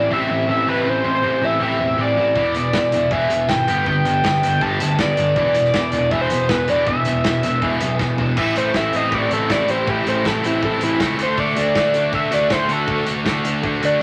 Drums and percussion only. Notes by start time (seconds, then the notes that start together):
2.36 kick
2.55 closed hi-hat
2.73 kick, snare
2.92 closed hi-hat
3.11 kick
3.30 closed hi-hat
3.49 kick, snare
3.68 closed hi-hat
3.86 kick
4.05 closed hi-hat
4.24 kick, snare
4.34 snare
4.43 closed hi-hat
4.61 kick
4.80 closed hi-hat
4.99 kick, snare
5.17 closed hi-hat
5.36 kick
5.55 closed hi-hat
5.65 snare
5.74 kick, snare
5.92 closed hi-hat
6.11 kick
6.30 closed hi-hat
6.49 kick, snare
6.68 closed hi-hat
6.87 kick
7.05 closed hi-hat
7.24 kick, snare
7.43 closed hi-hat
7.62 kick
7.80 closed hi-hat
7.99 kick, snare
8.18 floor tom
8.37 kick, crash
8.56 closed hi-hat
8.74 kick, snare
8.93 closed hi-hat
9.12 kick
9.31 closed hi-hat
9.50 kick, snare
9.68 closed hi-hat
9.87 kick
10.07 closed hi-hat
10.25 kick, snare
10.44 closed hi-hat
10.63 kick
10.81 closed hi-hat
11.00 kick, snare
11.19 closed hi-hat
11.38 kick
11.56 closed hi-hat
11.75 kick, snare
11.94 closed hi-hat
12.13 kick
12.32 snare, closed hi-hat
12.50 kick, snare
12.69 closed hi-hat
12.88 kick
13.06 closed hi-hat
13.26 kick, snare
13.45 closed hi-hat
13.63 kick
13.83 closed hi-hat